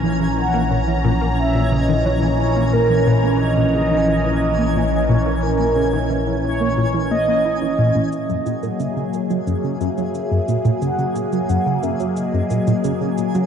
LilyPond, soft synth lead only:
\new Staff \with { instrumentName = "Soft synth lead" } { \time 4/4 \key fis \mixolydian \tempo 4 = 89 r8 fis''4 r8 e''8 dis''8 cis''8 cis''8 | ais'8 b'8 dis''8 dis''2 cis''8 | ais'4 r8 cis''4 dis''4. | e''8 fis''8 e''8 dis''8 cis''8 e''4. |
fis''8 gis''8 fis''8 e''8 dis''4. r8 | }